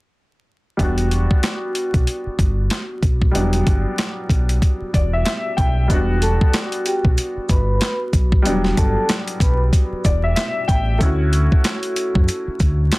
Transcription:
0.77 E1 G3 B3 D4, kick, closed hi-hat
0.83 F#4
0.98 closed hi-hat
1.11 closed hi-hat
1.31 kick
1.43 snare, clap, closed hi-hat
1.75 closed hi-hat
1.94 B1, kick, closed hi-hat
2.07 closed hi-hat
2.26 muted fingered electric bass stroke
2.39 G1, kick, closed hi-hat
2.70 snare, clap, closed hi-hat
3.03 B1, kick, closed hi-hat
3.22 kick
3.31 E1 G3 B3 D4, closed hi-hat
3.37 F#3
3.53 closed hi-hat
3.67 G1, kick, closed hi-hat
3.98 snare, clap, closed hi-hat
4.29 B1, kick, closed hi-hat
4.49 closed hi-hat
4.62 kick, closed hi-hat
4.81 muted fingered electric bass stroke
4.93 E1 D5, kick, closed hi-hat
5.13 E5
5.25 E5, snare, clap, closed hi-hat
5.57 B1 G5, kick, closed hi-hat
5.88 E1 G3 B3 D4, kick, closed hi-hat, maracas
5.94 F#4
6.22 A4 A5, closed hi-hat, maracas
6.41 kick
6.54 snare, clap, closed hi-hat, maracas
6.72 closed hi-hat
6.86 G4 G5, closed hi-hat, maracas
7.05 B1, kick
7.18 closed hi-hat, maracas
7.37 muted fingered electric bass stroke
7.49 G1 B4 B5, kick, closed hi-hat, maracas
7.81 snare, clap, closed hi-hat, maracas
8.13 B1, kick, closed hi-hat, maracas
8.32 kick
8.42 E1 G3 B3 D4, closed hi-hat, maracas
8.48 F#3
8.64 snare
8.77 G1 A4 A5, kick, closed hi-hat, maracas
9.09 snare, clap, closed hi-hat, maracas
9.27 closed hi-hat
9.40 B1 B4 B5, kick, closed hi-hat, maracas
9.73 kick, closed hi-hat, maracas
9.92 muted fingered electric bass stroke
10.04 E1 D5, kick, closed hi-hat, maracas
10.24 E5
10.36 E5, snare, clap, closed hi-hat, maracas
10.68 A1 G5, kick, closed hi-hat, maracas
10.98 D2 A3 C#4 E4, kick, closed hi-hat, maracas
11.04 F#4
11.33 closed hi-hat, maracas
11.52 kick
11.64 snare, clap, closed hi-hat, maracas
11.83 closed hi-hat
11.96 closed hi-hat, maracas
12.15 F#2, kick
12.28 closed hi-hat, maracas
12.47 muted fingered electric bass stroke
12.60 D2, kick, closed hi-hat, maracas
12.92 snare, clap, closed hi-hat, maracas

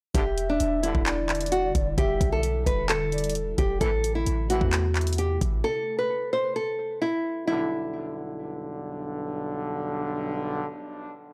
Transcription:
0.14 E1 G2 B2 D3 G3 E4 G4 E5, kick, closed hi-hat
0.38 closed hi-hat
0.49 D4
0.60 E1, closed hi-hat
0.83 G2 B2 D3 E4, closed hi-hat
0.95 E1, kick
1.06 D5, clap, closed hi-hat
1.29 clap, closed hi-hat
1.35 closed hi-hat
1.41 closed hi-hat
1.46 closed hi-hat
1.52 F#4, closed hi-hat
1.75 E1, kick, closed hi-hat
1.98 E1 G4 E5, kick, closed hi-hat
2.21 B1, kick, closed hi-hat
2.32 A4
2.43 closed hi-hat
2.66 E1 B4, kick, closed hi-hat
2.89 A4, clap, closed hi-hat
3.12 D5, closed hi-hat
3.18 closed hi-hat
3.24 closed hi-hat
3.30 closed hi-hat
3.35 closed hi-hat
3.58 E1 G4, kick, closed hi-hat
3.81 A1 A2 C3 E3 A3 A4, kick, closed hi-hat
4.04 closed hi-hat
4.15 E4
4.26 A1, closed hi-hat
4.50 A2 C3 E3 F#4, closed hi-hat
4.61 E2, kick
4.73 clap, closed hi-hat
4.95 clap, closed hi-hat
5.01 closed hi-hat
5.07 closed hi-hat
5.13 closed hi-hat
5.18 G4, closed hi-hat
5.41 A1, kick, closed hi-hat
5.64 A4
5.99 B4
6.33 C5
6.56 A4
7.02 E4
7.47 B1 G2 D3 E4

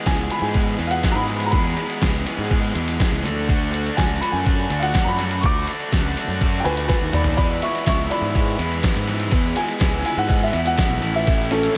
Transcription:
0.06 C#2 E2 B2 E3 G#3 B3 G#4 G#5, kick, snare, closed hi-hat
0.30 E2 B2 E3 G#3 B3 G#4 B5, closed hi-hat
0.42 G#2 G#5
0.54 E2 B2 E3 G#3 B3 G#4, kick, closed hi-hat
0.79 E2 B2 E3 G#3 B3 G#4, closed hi-hat
0.87 F5, closed hi-hat
0.91 F#5
1.03 E2 B2 E3 G#3 B3 G#4, kick, snare, closed hi-hat
1.11 G#2 A#5
1.16 B5
1.28 E2 B2 E3 G#3 B3 G#4, closed hi-hat
1.40 closed hi-hat
1.46 A#5
1.51 E2 B2 E3 G#3 B3 G#4 B5, kick, closed hi-hat
1.76 E2 B2 E3 G#3 B3 G#4, closed hi-hat
1.90 closed hi-hat
2.01 C#2 E2 B2 E3 G#3 B3 G#4, kick, snare, closed hi-hat
2.25 E2 B2 E3 G#3 B3 G#4, closed hi-hat
2.38 G#2
2.49 E2 B2 E3 G#3 B3 G#4, kick, closed hi-hat
2.73 E2 B2 E3 G#3 B3 G#4, closed hi-hat
2.88 closed hi-hat
2.98 E2 B2 E3 G#3 B3 G#4, kick, snare, closed hi-hat
3.12 C#2
3.23 D2 D3 A3 D4 F#4, closed hi-hat
3.48 D3 A3 D4 F#4, kick, closed hi-hat
3.71 D3 A3 D4 F#4, closed hi-hat
3.87 closed hi-hat
3.96 C#2 D3 A3 D4 F#4 G#5, kick, snare, closed hi-hat
4.21 D3 A3 D4 F#4 B5, closed hi-hat
4.32 F#2 G#5
4.45 D3 A3 D4 F#4, kick, closed hi-hat
4.70 D2 D3 A3 D4 F#4, closed hi-hat
4.79 F5 F#5, closed hi-hat
4.94 D3 A3 D4 F#4, kick, snare, closed hi-hat
5.04 F#2 A#5 B5
5.18 D3 A3 D4 F#4, snare, closed hi-hat
5.31 closed hi-hat
5.41 D2 D3 A3 D4 F#4 C#6, kick, closed hi-hat
5.45 D6
5.67 D3 A3 D4 F#4, closed hi-hat
5.80 closed hi-hat
5.92 C#2 D3 A3 D4 F#4, kick, snare, closed hi-hat
6.17 D3 A3 D4 F#4, closed hi-hat
6.28 F#2
6.41 D3 A3 D4 F#4, kick, closed hi-hat
6.60 G5
6.64 D2 D3 A3 D4 F#4 B4 G#5, closed hi-hat
6.77 closed hi-hat
6.88 D3 A3 D4 F#4 B4 G#5, kick, snare, closed hi-hat
7.01 D#2
7.13 D3 A3 D4 F#4 D5 B5, closed hi-hat, mid tom
7.24 floor tom
7.37 E2 B2 E3 G#3 B3 E4 D5 B5, kick, closed hi-hat
7.62 E2 B2 E3 G#3 B3 E4 E5 C#6, closed hi-hat
7.75 closed hi-hat
7.85 C#2 E2 B2 E3 G#3 B3 E4 E5 C#6, kick, snare, closed hi-hat
8.10 E2 B2 E3 G#3 B3 E4 D5 B5, closed hi-hat
8.22 G#2
8.33 E2 B2 E3 G#3 B3 E4, kick, closed hi-hat
8.57 E2 B2 E3 G#3 B3 E4, closed hi-hat
8.72 closed hi-hat
8.82 E2 B2 E3 G#3 B3 E4, kick, snare, closed hi-hat
8.96 G#2
9.07 E2 B2 E3 G#3 B3 E4, snare, closed hi-hat
9.20 closed hi-hat
9.31 E2 B2 E3 G#3 B3 E4, kick, closed hi-hat
9.55 E2 B2 E3 G#3 B3 E4 G#5, closed hi-hat
9.68 closed hi-hat
9.79 C#2 E2 B2 E3 G#3 B3 E4, kick, snare, closed hi-hat
10.04 E2 B2 E3 G#3 B3 E4 G#5, closed hi-hat
10.17 G#2 F#5
10.27 E2 B2 E3 G#3 B3 E4, kick, closed hi-hat
10.43 E5
10.53 E2 B2 E3 G#3 B3 E4, closed hi-hat
10.66 F#5, closed hi-hat
10.77 E2 B2 E3 G#3 B3 E4, kick, snare, closed hi-hat
10.89 B1
11.02 A1 A2 E3 A3 C#4 E4, closed hi-hat
11.16 E5
11.26 A2 E3 A3 C#4 E4, kick, closed hi-hat
11.51 A2 E3 A3 C#4 E4 A4, closed hi-hat
11.63 closed hi-hat

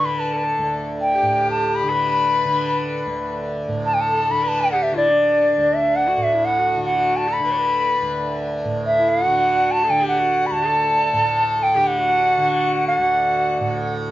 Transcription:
Already playing: D2 A2 D3 B4
0.05 B5
0.17 B4 A5
0.33 A4 B4
0.44 A4
0.58 D2
1.01 G5
1.14 G4
1.22 A2
1.51 A5
1.75 B5
1.84 D3
1.89 B4
2.45 D3
3.06 D2
3.68 A2
3.86 A5
3.94 A4 G5
4.01 A5
4.12 A4
4.30 D3 B5
4.43 B4
4.48 A5
4.61 G5
4.72 G4 F#5
4.83 E5
4.92 D3
4.96 E4 D5
5.09 D4
5.57 D2
5.74 E5
5.96 F#5
6.08 F#4
6.17 A2
6.23 E5
6.34 E4
6.45 F#5
6.58 F#4
6.77 D3
6.85 F#5
6.96 F#4
7.17 A5
7.28 A4
7.33 B5
7.39 D3
7.45 B4
7.51 C#5
7.58 B4
8.02 D2
8.65 A2
8.86 E5
8.98 E4
9.09 F5
9.22 F#4 F#5
9.27 D3
9.71 A5
9.84 A4
9.89 D3 G5
10.02 G4
10.08 F#5
10.19 F#4
10.46 B5
10.51 D2 A5
10.64 A4
11.13 A2
11.63 G5
11.75 D3 G4
11.87 F#5
11.98 F#4
12.38 D3
12.88 F#5
12.98 D2 F#4
13.60 A2

